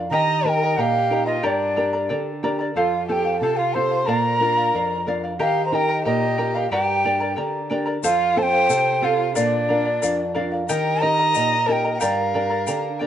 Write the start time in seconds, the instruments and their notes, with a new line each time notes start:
Already playing: charango D5 F5
0.10 nylon-string guitar D#3, charango G4 A#4 D#5 G5 A#5, violin D#5, quena A#5
0.45 nylon-string guitar D#4 G4 A#4, charango A#4 D#5 G5 A#5, violin A#4, quena A5
0.49 quena G5
0.62 charango A#4 D#5 A#5
0.77 nylon-string guitar A#2, violin G4, charango A#4 D#5 G5 A#5, quena F5 F#5
1.11 nylon-string guitar D#4 G4 A#4, charango A#4 D#5 G5 A#5
1.26 violin F4, charango A#4 D#5 A#5, quena D#5
1.43 nylon-string guitar G2, violin D4, charango G4 A#4 D5 G5 A#5, quena D5
1.76 nylon-string guitar D4 G4 A#4, charango A#4 D5 G5 A#5
1.93 charango A#4 D5 A#5
2.09 nylon-string guitar D3, charango A#4 D5 G5 A#5
2.43 nylon-string guitar D4 G4 A#4, charango A#4 D5 G5 A#5
2.59 charango A#4 D5 A#5
2.76 nylon-string guitar F2, violin F4, charango A4 C5 F5, quena F5
3.08 nylon-string guitar C4 F4 A4, violin G4, charango A4 C5 F5, quena G5 A5
3.25 charango C5 F5
3.40 nylon-string guitar C3, violin A4, charango A4 C5 F5, quena A5
3.57 violin F4, quena F5
3.74 nylon-string guitar C4 F4 A4, charango A4 C5 F5, violin C5, quena C6
3.91 charango C5 F5
4.06 nylon-string guitar A#2, violin A#4, charango A#4 D5 F5, quena A#5
4.40 nylon-string guitar D4 F4 A#4, charango A#4 D5 F5
4.57 charango D5 F5
4.74 nylon-string guitar F2, charango A#4 D5 F5
5.07 nylon-string guitar D4 F4 A#4, charango A#4 D5 F5
5.24 charango D5 F5
5.39 nylon-string guitar D#3, charango G4 A#4 D#5 G5 A#5, violin G4, quena F5
5.65 violin C5, quena A#5
5.72 nylon-string guitar D#4 G4 A#4, violin A#4, charango A#4 D#5 G5 A#5, quena G5
5.89 charango A#4 D#5 A#5
6.05 nylon-string guitar A#2, violin G4, charango A#4 D#5 G5 A#5, quena D#5
6.38 nylon-string guitar D#4 G4 A#4, charango A#4 D#5 G5 A#5
6.54 violin G4, charango A#4 D#5 A#5, quena F5
6.71 nylon-string guitar G2, charango G4 A#4 D5 G5 A#5, violin G4, quena G5
7.04 nylon-string guitar D4 G4 A#4, charango A#4 D5 G5 A#5
7.20 charango A#4 D5 A#5
7.36 nylon-string guitar D3, charango A#4 D5 G5 A#5
7.70 nylon-string guitar D4 G4 A#4, charango A#4 D5 G5 A#5
7.86 charango A#4 D5 A#5
8.03 nylon-string guitar F2, violin F4, charango A4 C5 F5, quena F5, shaker
8.35 nylon-string guitar C4 F4 A4, charango A4 C5 F5, violin C5, quena A5
8.43 quena G5
8.53 charango C5 F5
8.69 nylon-string guitar C3, charango A4 C5 F5, shaker
9.02 nylon-string guitar C4 F4 A4, violin F4, charango A4 C5 F5, quena F5
9.19 charango C5 F5
9.35 nylon-string guitar A#2, violin D4, charango A#4 D5 F5, shaker
9.39 quena D5
9.69 nylon-string guitar D4 F4 A#4, charango A#4 D5 F5
9.85 charango D5 F5
10.02 nylon-string guitar F2, charango A#4 D5 F5, shaker
10.35 nylon-string guitar D4 F4 A#4, charango A#4 D5 F5
10.52 charango D5 F5
10.69 nylon-string guitar D#3, charango G4 A#4 D#5 G5 A#5, violin A#4, quena G5, shaker
11.01 nylon-string guitar D#4 G4 A#4, charango A#4 D#5 G5 A#5, violin D#5, quena A#5
11.19 charango A#4 D#5 A#5
11.34 nylon-string guitar A#2, charango A#4 D#5 G5 A#5, shaker
11.66 nylon-string guitar D#4 G4 A#4, violin A#4, charango A#4 D#5 G5 A#5, quena A5
11.72 quena G5
11.84 charango A#4 D#5 A#5
11.94 violin A#4, quena G5
11.98 charango G4 A#4 D5 G5 A#5, violin A#4, quena F5, shaker
12.02 nylon-string guitar G2
12.34 nylon-string guitar D4 G4 A#4, charango A#4 D5 G5 A#5
12.50 charango A#4 D5 A#5
12.67 nylon-string guitar D3, charango A#4 D5 G5 A#5, shaker
12.99 nylon-string guitar D4 G4 A#4, charango A#4 D5 G5 A#5